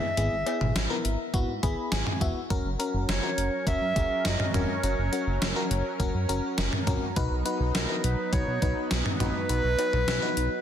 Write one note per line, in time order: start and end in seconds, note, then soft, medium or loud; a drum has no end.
0.00 1.05 E5 loud
0.17 0.29 G#1 loud
0.17 0.36 B3 medium
0.17 0.36 E4 medium
0.17 0.36 G#4 medium
0.17 closed hi-hat medium
0.32 0.44 G#1 loud
0.46 0.74 B3 medium
0.46 0.74 E4 medium
0.46 0.74 G#4 medium
0.46 closed hi-hat medium
0.46 cowbell medium
0.61 0.73 G#1 medium
0.61 mid tom medium
0.76 0.88 G#1 loud
0.76 snare loud
0.76 closed hi-hat medium
0.90 1.18 B3 medium
0.90 1.18 E4 medium
0.90 1.18 A#4 loud
1.05 1.17 G#1 loud
1.05 closed hi-hat medium
1.34 1.46 G#1 loud
1.34 1.53 B3 medium
1.34 1.53 E4 medium
1.34 1.53 F#4 loud
1.34 kick medium
1.34 closed hi-hat medium
1.48 1.60 G#2 loud
1.63 1.75 G#1 loud
1.63 2.00 B3 medium
1.63 2.00 E4 medium
1.63 2.00 G#4 loud
1.63 1.90 B5 medium
1.63 kick medium
1.63 closed hi-hat medium
1.92 2.04 G#1 loud
1.92 2.19 G#5 medium
1.92 snare loud
1.92 closed hi-hat medium
2.07 mid tom medium
2.21 2.33 E1 medium
2.21 2.40 B3 medium
2.21 2.40 E4 medium
2.21 2.40 F#4 loud
2.21 2.48 E5 medium
2.21 kick loud
2.21 closed hi-hat medium
2.50 2.62 F#1 loud
2.50 7.13 F#3 medium
2.50 2.69 C#4 loud
2.50 7.12 C#4 medium
2.50 2.69 F#4 medium
2.50 2.69 A#4 loud
2.50 7.12 A#4 medium
2.50 kick loud
2.50 closed hi-hat medium
2.65 2.77 F#1 loud
2.79 3.07 C#4 medium
2.79 3.07 F#4 medium
2.79 3.07 A#4 loud
2.79 closed hi-hat medium
2.94 3.06 F#1 loud
3.09 3.20 F#1 loud
3.09 3.63 C#5 loud
3.09 snare loud
3.09 closed hi-hat medium
3.23 3.51 C#4 medium
3.23 3.51 F#4 medium
3.23 3.51 A#4 medium
3.38 3.50 F#1 loud
3.38 closed hi-hat medium
3.67 3.79 F#1 loud
3.67 3.86 C#4 medium
3.67 3.86 F#4 medium
3.67 3.86 A#4 medium
3.67 4.27 E5 loud
3.67 kick medium
3.67 closed hi-hat medium
3.81 3.93 F#2 loud
3.96 4.08 F#1 loud
3.96 4.33 C#4 medium
3.96 4.33 F#4 medium
3.96 4.33 G#4 medium
3.96 kick loud
3.96 closed hi-hat medium
4.25 4.37 F#1 loud
4.25 4.54 D#5 loud
4.25 snare loud
4.25 closed hi-hat medium
4.40 mid tom loud
4.54 4.66 E1 loud
4.54 4.73 C#4 medium
4.54 4.73 F#4 medium
4.54 4.73 A#4 medium
4.54 5.67 C#5 loud
4.54 closed hi-hat medium
4.54 mid tom loud
4.83 4.95 F#1 loud
4.83 5.02 C#4 medium
4.83 5.02 F#4 medium
4.83 5.02 A#4 medium
4.83 closed hi-hat medium
4.98 5.10 F#1 loud
5.12 5.41 C#4 medium
5.12 5.40 F#4 medium
5.12 5.41 A#4 medium
5.12 closed hi-hat medium
5.27 5.39 F#1 loud
5.42 5.54 F#1 loud
5.42 snare loud
5.42 closed hi-hat medium
5.56 5.84 C#4 medium
5.56 5.84 F#4 medium
5.56 5.84 A#4 loud
5.71 5.83 F#1 loud
5.71 closed hi-hat medium
6.00 6.12 F#1 loud
6.00 6.19 C#4 loud
6.00 6.18 F#4 medium
6.00 6.19 A#4 loud
6.00 kick medium
6.00 closed hi-hat medium
6.14 6.26 F#2 loud
6.29 6.41 F#1 medium
6.29 6.66 C#4 medium
6.29 6.66 F#4 medium
6.29 6.66 A#4 loud
6.29 closed hi-hat medium
6.58 6.70 F#1 loud
6.58 snare loud
6.58 closed hi-hat medium
6.73 mid tom loud
6.87 6.99 A#1 loud
6.87 7.06 C#4 medium
6.87 7.06 F#4 medium
6.87 7.06 A#4 loud
6.87 kick loud
6.87 closed hi-hat medium
6.87 mid tom loud
7.16 7.28 B1 loud
7.16 10.61 F#3 medium
7.16 10.61 B3 medium
7.16 7.35 D#4 loud
7.16 10.61 D#4 medium
7.16 7.35 F#4 medium
7.16 7.35 B4 loud
7.16 kick loud
7.16 closed hi-hat medium
7.31 7.43 B1 loud
7.45 7.74 D#4 medium
7.45 7.74 F#4 medium
7.45 7.74 B4 loud
7.45 closed hi-hat medium
7.60 7.72 B1 loud
7.75 7.87 B1 loud
7.75 8.05 A#4 medium
7.75 snare loud
7.75 closed hi-hat medium
7.89 8.17 D#4 medium
7.89 8.17 F#4 medium
7.89 8.17 B4 medium
8.04 8.16 B1 loud
8.04 8.34 B4 loud
8.04 closed hi-hat medium
8.33 8.45 B1 loud
8.33 8.52 D#4 medium
8.33 8.52 F#4 medium
8.33 8.52 B4 medium
8.33 8.91 C#5 loud
8.33 kick medium
8.33 closed hi-hat medium
8.47 8.59 B2 loud
8.62 8.74 B1 loud
8.62 8.99 D#4 medium
8.62 8.99 F#4 medium
8.62 8.99 B4 medium
8.62 kick loud
8.62 closed hi-hat medium
8.91 9.03 B1 loud
8.91 snare loud
8.91 closed hi-hat medium
9.06 mid tom loud
9.20 9.32 A#1 medium
9.20 9.39 D#4 medium
9.20 9.39 F#4 medium
9.20 9.39 B4 medium
9.20 10.61 B4 loud
9.20 closed hi-hat medium
9.20 mid tom loud
9.49 9.61 B1 loud
9.49 9.68 D#4 medium
9.49 9.68 F#4 medium
9.49 9.68 B4 medium
9.49 closed hi-hat medium
9.64 9.76 B1 medium
9.78 10.07 D#4 medium
9.78 10.07 F#4 medium
9.78 10.07 B4 medium
9.78 closed hi-hat medium
9.78 cowbell medium
9.93 10.05 B1 loud
9.93 mid tom medium
10.08 10.20 B1 loud
10.08 snare loud
10.08 closed hi-hat medium
10.22 10.50 D#4 medium
10.22 10.50 F#4 medium
10.22 10.50 B4 loud
10.37 10.49 B1 loud
10.37 closed hi-hat medium